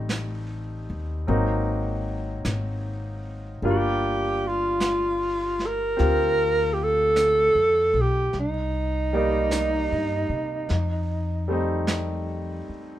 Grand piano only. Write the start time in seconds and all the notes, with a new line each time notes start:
Already playing: G3 A3 C4 D#4
1.27 F#3 A#3 C4 D#4
3.63 G3 A#3 D4 F4
5.97 C4 F4 G4
9.13 G3 A#3 D#4 D5
11.48 G3 A3 C4
11.52 D#4